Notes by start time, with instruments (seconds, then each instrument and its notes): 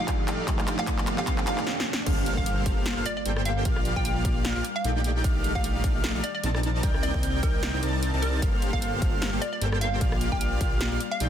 Already playing: analog synth pad A#2 F4 G4 A4 D5, felt piano F3, riser
0.00 supersaw synth A3 D#4 G4 D5 F5, felt piano A3 D4 G4, synth pluck F5
0.08 kick, clap, closed hi-hat
0.28 analog synth pad C3 D4 D#4, supersaw synth A3 D#4 G4 D5 F5, clap, closed hi-hat
0.47 felt piano F3 A3 D4 G4, supersaw synth A3 D#4, kick, clap, closed hi-hat
0.59 clap
0.68 clap, closed hi-hat
0.77 felt piano F3 A3 D4 G4, supersaw synth A3 D#4 G4 D5 F5, synth pluck F5, clap
0.86 felt piano F3 A3 D4 G4, supersaw synth A3 D#4 G4 D5 F5, kick, clap, closed hi-hat
0.98 clap
1.07 clap, closed hi-hat
1.16 felt piano F3 A3 D4 G4, supersaw synth A3 D#4 G4 D5 F5, synth pluck F5, clap
1.26 felt piano F3 A3 D4 G4, supersaw synth A3 D#4 G4 D5 F5, synth pluck F5, kick, clap, closed hi-hat
1.38 clap
1.46 felt piano F3 A3 D4 G4, supersaw synth A3 D#4 G4 D5 F5, synth pluck F5, clap, closed hi-hat
1.58 clap
1.67 snare
1.80 snare
1.93 snare
2.06 detuned saw bass G1, analog synth pad G3 A#3 F4, supersaw synth A#3 G4 A4 C5 F5, digital synth lead F6, kick, closed hi-hat, crash, impact
2.26 closed hi-hat
2.37 detuned saw bass G1, supersaw synth A#3 G4 A4 C5 F5, synth pluck F5, digital synth lead F6, kick
2.46 closed hi-hat
2.66 detuned saw bass G1, supersaw synth A#3 G4 A4 C5 F5, digital synth lead F6, kick, closed hi-hat
2.86 snare, closed hi-hat
2.97 detuned saw bass G1, supersaw synth A#3 G4 A4 C5 F5, digital synth lead F6
3.06 synth pluck D5, closed hi-hat
3.17 synth pluck D5
3.26 detuned saw bass G1, supersaw synth A#3 G4 A4 C5 G5, digital synth lead G6, closed hi-hat
3.37 cross-stick
3.45 synth pluck F5, closed hi-hat
3.65 detuned saw bass A#1, analog synth pad G3 A#3 D4, supersaw synth A#3 F4 G4 D5 F5, digital synth lead F6, kick, closed hi-hat
3.76 cross-stick
3.85 closed hi-hat
3.96 detuned saw bass A#1, supersaw synth A#3 F4 G4 D5, synth pluck G5, digital synth lead F6, kick
4.05 synth pluck G5, closed hi-hat
4.25 detuned saw bass A#1, supersaw synth A#3 F4 G4 D5, digital synth lead F6, kick, closed hi-hat
4.45 snare, closed hi-hat
4.56 detuned saw bass A#1, supersaw synth A#3 F4 G4 D5 F5, digital synth lead F6
4.65 closed hi-hat
4.76 synth pluck F5
4.85 detuned saw bass A#1, supersaw synth A3 D#4 G4 D5 G5, digital synth lead G6, closed hi-hat
5.04 analog synth pad D#3 D5, closed hi-hat
5.24 detuned saw bass A#1, supersaw synth A3 D#4 G4 D5 F5, digital synth lead F6, kick, closed hi-hat
5.44 closed hi-hat
5.55 detuned saw bass A#1, supersaw synth A3 D#4 G4 D5 F5, synth pluck F5, digital synth lead F6, kick
5.64 closed hi-hat
5.84 detuned saw bass A#1, supersaw synth A3 D#4 G4 D5 F5, digital synth lead F6, kick, closed hi-hat
6.04 snare, closed hi-hat
6.15 detuned saw bass A#1, supersaw synth A3 D#4 G4 D5 F5, digital synth lead F6
6.24 synth pluck D5, closed hi-hat
6.35 synth pluck D5
6.43 detuned saw bass A#1, supersaw synth C4 D#4 A#4 D5 A5, digital synth lead A6, closed hi-hat
6.55 cross-stick
6.63 analog synth pad C3 A#3 D#4, closed hi-hat
6.83 detuned saw bass C2, supersaw synth C4 D#4 A#4 D5 G5, digital synth lead G6, kick, closed hi-hat
6.94 cross-stick
7.03 synth pluck D5, closed hi-hat
7.14 detuned saw bass C2, supersaw synth C4 D#4 A#4 D5 G5, digital synth lead G6, kick
7.23 closed hi-hat
7.43 detuned saw bass C2, supersaw synth C4 A#4 D5 G5, synth pluck A#4, kick, closed hi-hat
7.63 snare, closed hi-hat
7.74 detuned saw bass C2, supersaw synth C4 D#4 A#4 D5 G5, digital synth lead G6
7.83 detuned saw bass C2, supersaw synth C4 D#4 A#4 D5 A5, digital synth lead A6, closed hi-hat
8.03 closed hi-hat
8.14 detuned saw bass C2, supersaw synth C4 D#4 A#4 D5 A5, digital synth lead A6
8.22 synth pluck A#4, closed hi-hat
8.42 detuned saw bass G1, analog synth pad G3 A#3 F4, supersaw synth A#3 G4, digital synth lead F6, kick, closed hi-hat
8.62 closed hi-hat
8.73 detuned saw bass G1, supersaw synth A#3 G4 A4 C5 F5, synth pluck F5, digital synth lead F6, kick
8.82 closed hi-hat
9.02 detuned saw bass G1, supersaw synth A#3 G4 A4 C5 F5, digital synth lead F6, kick, closed hi-hat
9.22 snare, closed hi-hat
9.33 detuned saw bass G1, supersaw synth A#3 G4 A4 C5 F5, digital synth lead F6
9.41 synth pluck D5, closed hi-hat
9.53 synth pluck D5
9.61 detuned saw bass G1, supersaw synth A#3 G4 A4 C5 G5, digital synth lead G6, closed hi-hat
9.72 cross-stick
9.81 synth pluck F5, closed hi-hat
10.01 detuned saw bass A#1, supersaw synth A#3 F4 G4 D5 F5, analog synth pad D5, digital synth lead F6, kick, closed hi-hat
10.12 cross-stick
10.21 closed hi-hat
10.32 detuned saw bass A#1, supersaw synth A#3 G4 D5 F5, synth pluck G5, digital synth lead F6, kick
10.41 synth pluck G5, closed hi-hat
10.61 detuned saw bass A#1, supersaw synth A#3 F4 G4 D5 F5, digital synth lead F6, kick, closed hi-hat
10.81 snare, closed hi-hat
10.92 detuned saw bass A#1, supersaw synth A#3 F4 G4 D5 F5, digital synth lead F6
11.01 closed hi-hat
11.11 synth pluck F5
11.20 detuned saw bass A#1, supersaw synth A3 D#4 G4 D5 G5, digital synth lead G6, closed hi-hat